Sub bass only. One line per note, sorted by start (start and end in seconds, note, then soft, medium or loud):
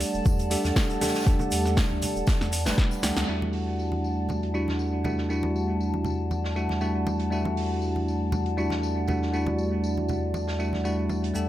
0.14 0.21 E1 medium
0.26 0.56 E2 medium
0.64 0.72 E2 loud
0.90 0.97 E1 medium
1.26 1.35 E2 loud
1.52 1.82 E2 loud
1.91 2.05 D2 medium
2.16 2.23 E1 medium
2.41 2.68 E2 medium
2.66 2.73 E1 medium
3.03 3.11 D2 medium
3.17 3.24 D2 medium
3.29 11.33 E2 medium
11.35 11.49 E2 medium